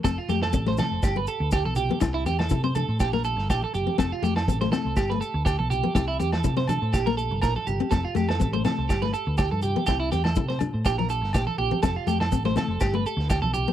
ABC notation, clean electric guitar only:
X:1
M:4/4
L:1/16
Q:"Swing 16ths" 1/4=122
K:F
V:1 name="Clean electric guitar"
A F G A2 c A2 G =B A2 G A G2 | z E G A2 c A2 G B A2 G A G2 | A F G A2 c A2 G =B A2 G A G2 | G E G A2 c A2 G B A2 B A G2 |
A F G A2 c A2 G =B A2 G A G2 | G E G A2 c z2 G B A2 G A G2 | A F G A2 c A2 G =B A2 G A G2 |]